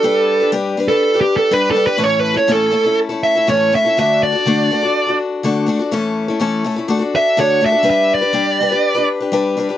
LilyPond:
<<
  \new Staff \with { instrumentName = "Lead electric guitar" } { \time 4/4 \key g \lydian \tempo 4 = 123 a'4 \tuplet 3/2 { r4 a'8~ a'8 g'8 a'8 b'8 a'8 b'8 } | \tuplet 3/2 { cis''8 b'8 cis''8 } a'4 r8 e''8 cis''8 e''8 | e''8 d''2 r4. | r2 r8 e''8 cis''8 e''8 |
e''8 d''2 r4. | }
  \new Staff \with { instrumentName = "Steel-string acoustic guitar" } { \time 4/4 \key g \lydian <g d' g' b'>8. <d' g' b'>16 <g d' g' b'>8 <g d' g' b'>16 <d' g' b'>8 <d' g' b'>8. <g d' g' b'>8 <g d' g' b'>16 <d' g' b'>16 | <a, e a cis' e' a'>8. <a cis' e' a'>16 <a, e a cis' e' a'>8 <a cis' e' a'>16 <a cis' e' a'>8 <a cis' e' a'>8 <a cis' e' a'>16 <a, e a cis' e' a'>8 <a cis' e' a'>16 <a cis' e' a'>16 | <d a d' fis' a'>8. <d' fis' a'>16 <d a d' fis' a'>8 <a d' fis' a'>16 <d' fis' a'>8 <d' fis' a'>8. <d a d' fis' a'>8 <a d' fis' a'>16 <d' fis' a'>16 | <a, e a cis' e' a'>8. <a cis' e' a'>16 <a, e a cis' e' a'>8 <a cis' e' a'>16 <a cis' e' a'>16 <d a d' fis' a'>16 <d' fis' a'>8. <d a d' fis' a'>8 <a d' fis' a'>16 <d' fis' a'>16 |
<g d' g' b'>8. <d' g' b'>16 <g d' g' b'>8 <g d' g' b'>16 <d' g' b'>8 <d' g' b'>8 <d' g' b'>16 <g d' g' b'>8 <g d' g' b'>16 <d' g' b'>16 | }
>>